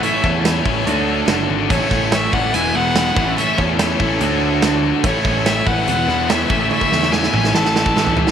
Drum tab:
HH |x---x---x---x---|x---x---x---x---|x---x---x---x---|x---x---x---x---|
SD |----o-------o---|--o-o-------o---|----o-------o---|----o-----o-o---|
T1 |----------------|----------------|----------------|----------------|
T2 |----------------|----------------|----------------|----------------|
FT |----------------|----------------|----------------|----------------|
BD |--o---o---------|o-o---o-------o-|--o---o---------|o-o---o-------o-|

HH |----------------|
SD |--oooo-oooo-o--o|
T1 |o---------------|
T2 |------o---------|
FT |-------------oo-|
BD |-o---------o----|